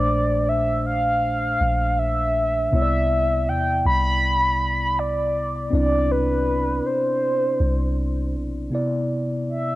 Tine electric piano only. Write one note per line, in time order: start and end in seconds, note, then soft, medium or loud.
0.00 2.67 A#2 medium
0.00 2.68 A3 medium
0.00 2.69 D4 medium
0.00 2.70 C5 medium
2.71 5.68 C3 medium
2.71 5.68 B3 medium
2.71 5.69 E4 medium
2.75 2.81 C#5 medium
2.82 5.73 D5 medium
5.70 8.67 C4 medium
5.70 8.68 D4 medium
5.70 8.69 E4 medium
5.75 8.70 D5 medium
8.70 9.75 C3 medium
8.70 9.75 B3 medium
8.70 9.75 E4 medium
8.75 9.75 D5 medium